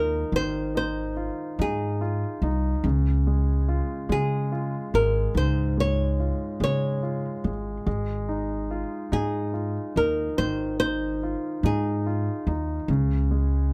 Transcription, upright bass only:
0.00 0.22 D#2 medium
0.32 1.28 G#1 medium
1.59 2.23 G#2 medium
2.42 2.74 C2 medium
2.84 3.80 C#2 medium
4.09 4.73 C#3 medium
4.94 5.26 G#1 medium
5.35 6.31 C#2 medium
6.60 7.24 C#3 medium
7.44 7.76 G#1 medium
7.86 8.82 G#1 medium
9.12 9.76 G#2 medium
9.96 10.28 D#2 medium
10.38 11.34 G#1 medium
11.63 12.27 G#2 medium
12.47 12.78 D#2 medium
12.88 13.73 C#2 medium

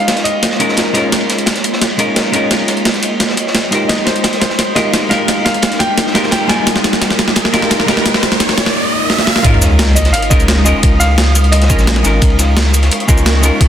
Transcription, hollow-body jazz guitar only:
0.00 0.57 G#3 medium
0.00 0.58 C#4 medium
0.00 0.58 D#4 medium
0.00 0.59 F4 medium
0.00 0.59 A#4 medium
0.59 0.92 G#3 medium
0.59 0.93 C#4 medium
0.59 0.93 D#4 medium
0.59 0.93 F4 medium
0.59 0.93 A#4 medium
0.93 1.96 G#3 medium
0.93 1.96 C#4 medium
0.93 1.97 D#4 medium
0.93 1.97 F4 medium
0.97 1.98 A#4 loud
1.98 2.31 G#3 medium
1.98 2.31 C#4 medium
1.98 2.32 D#4 medium
1.98 2.32 F4 medium
1.98 2.32 A#4 loud
2.32 3.35 G#3 medium
2.32 3.35 C#4 medium
2.32 3.36 D#4 medium
2.32 3.36 F4 medium
2.36 3.37 A#4 loud
3.71 4.74 G#3 medium
3.71 4.75 D#4 medium
3.71 4.75 F4 medium
3.71 4.76 G4 medium
3.75 4.76 A#4 medium
4.75 5.08 G#3 medium
4.75 5.09 D#4 medium
4.75 5.09 F4 medium
4.75 5.09 G4 medium
4.75 5.10 A#4 loud
5.09 6.12 G#3 medium
5.09 6.13 D#4 medium
5.09 6.14 G4 medium
5.13 6.14 A#4 loud
6.14 6.46 G#3 medium
6.14 6.47 D#4 medium
6.14 6.48 F4 medium
6.14 6.48 G4 medium
6.14 6.48 A#4 loud
6.47 7.52 G3 medium
6.47 7.51 G#3 medium
6.47 7.51 D#4 medium
6.47 7.52 F4 medium
6.47 7.53 A#4 loud
7.52 7.85 G#3 medium
7.52 7.86 D#4 medium
7.52 7.86 F4 medium
7.52 7.87 G4 medium
7.52 7.87 A#4 loud
7.86 8.74 G#3 medium
7.86 8.75 D#4 medium
7.86 8.76 G4 medium
7.90 8.76 A#4 loud
9.42 9.96 G#3 loud
9.42 9.96 C#4 medium
9.42 9.97 D#4 medium
9.42 9.97 F4 medium
9.47 9.98 A#4 loud
10.30 10.63 G#3 medium
10.30 10.64 C#4 medium
10.30 10.64 D#4 medium
10.30 10.64 F4 medium
10.30 10.64 A#4 loud
10.64 11.67 G#3 medium
10.64 11.68 C#4 medium
10.64 11.68 D#4 medium
10.64 11.69 F4 medium
10.68 11.69 A#4 loud
11.69 12.02 G#3 medium
11.69 12.02 C#4 medium
11.69 12.03 D#4 medium
11.69 12.03 F4 medium
11.69 12.03 A#4 loud
12.03 13.06 G#3 medium
12.03 13.06 C#4 medium
12.03 13.07 D#4 medium
12.03 13.07 F4 medium
12.07 13.08 A#4 loud
13.07 13.40 G#3 medium
13.07 13.41 C#4 medium
13.07 13.41 D#4 medium
13.07 13.42 F4 medium
13.07 13.42 A#4 loud
13.41 13.68 G#3 medium
13.41 13.68 C#4 medium
13.41 13.68 D#4 medium
13.41 13.68 F4 medium
13.41 13.68 A#4 loud

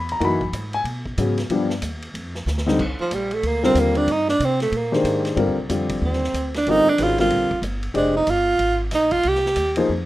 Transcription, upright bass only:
0.00 0.20 E2 medium
0.21 0.52 F#2 medium
0.53 0.84 G#2 medium
0.84 1.16 B2 medium
1.18 1.49 G#2 medium
1.50 1.81 G2 medium
1.82 2.13 D#2 medium
2.14 2.46 F2 medium
2.46 2.78 D2 medium
2.79 2.98 C2 medium
2.99 muted upright bass stroke soft
3.11 3.43 A#1 medium
3.43 3.74 D2 medium
3.75 4.07 D#2 medium
4.07 4.39 G2 medium
4.40 4.71 C3 medium
4.72 5.04 A#2 medium
5.04 5.36 G#2 medium
5.37 5.49 G2 medium
5.47 5.57 D#2 medium
5.58 5.68 C2 medium
5.69 6.01 F2 medium
6.02 6.33 D#2 medium
6.34 6.65 D2 medium
6.67 6.85 G1 medium
6.86 muted upright bass stroke soft
6.98 7.30 G#1 medium
7.30 7.49 A#1 medium
7.51 muted upright bass stroke soft
7.62 7.94 G1 medium
7.94 8.26 F1 medium
8.27 8.59 G1 medium
8.59 8.91 G#1 medium
8.92 9.23 A#1 medium
9.25 9.55 C2 medium
9.56 9.88 D#2 medium
9.89 10.06 F2 medium

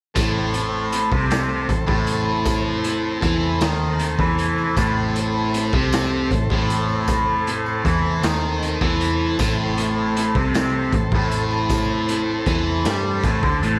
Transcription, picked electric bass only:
0.16 1.08 A1 medium
1.12 1.66 C2 medium
1.69 1.87 A1 medium
1.88 3.19 A1 loud
3.22 3.59 E2 medium
3.61 4.15 D#2 medium
4.19 4.73 E2 medium
4.77 5.69 A1 medium
5.73 6.27 C2 medium
6.31 6.49 A1 medium
6.50 7.81 A1 medium
7.85 8.21 E2 medium
8.23 8.77 D#2 loud
8.81 9.35 E2 medium
9.39 10.31 A1 medium
10.35 10.89 C2 medium
10.93 11.11 A1 medium
11.12 12.43 A1 loud
12.47 12.83 E2 medium
12.85 13.21 G2 medium
13.24 13.42 A1 medium
13.42 13.61 D2 medium
13.62 13.79 A1 medium

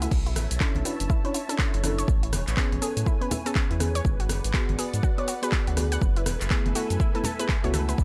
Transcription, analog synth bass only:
0.11 0.38 B1 loud
0.36 0.47 A1 medium
0.51 0.58 B1 medium
0.75 0.83 B1 medium
1.00 1.07 F#1 medium
1.74 2.04 F#1 medium
2.08 2.34 A1 loud
2.33 2.44 E1 medium
2.48 2.55 A1 medium
2.72 2.79 A1 loud
2.97 3.04 A2 medium
3.71 4.01 E2 medium
4.05 4.31 G#1 loud
4.29 4.41 F#1 medium
4.44 4.52 G#1 medium
4.69 4.76 G#1 loud
4.94 5.01 G#2 medium
5.67 5.98 D2 medium
6.02 6.28 F#1 loud
6.26 6.37 E1 medium
6.41 6.48 F#1 medium
6.66 6.73 F#1 medium
6.90 6.97 F#2 medium
7.64 7.94 C#2 medium
7.98 8.04 B1 loud

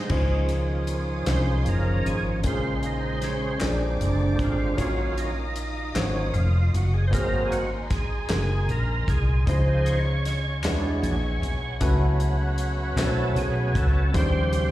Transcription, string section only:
0.09 2.42 F5 medium
0.09 2.42 C6 medium
0.09 2.42 D#6 medium
2.43 4.76 G#5 medium
2.43 3.60 A#5 medium
2.43 3.60 C6 medium
3.60 7.10 F5 medium
3.60 4.77 A#5 medium
3.60 4.77 D6 medium
4.78 9.43 D#5 medium
4.78 7.10 D#6 medium
7.14 9.45 G#5 medium
7.14 9.45 A#5 medium
7.14 10.61 C6 medium
9.47 10.63 D#5 medium
9.47 10.63 F5 medium
10.63 11.79 E5 medium
10.63 14.11 F#5 medium
10.63 11.80 G#5 medium
11.80 14.11 E5 medium
11.80 14.12 B5 medium
14.15 14.71 F5 medium
14.15 14.71 G5 medium
14.15 14.71 C6 medium

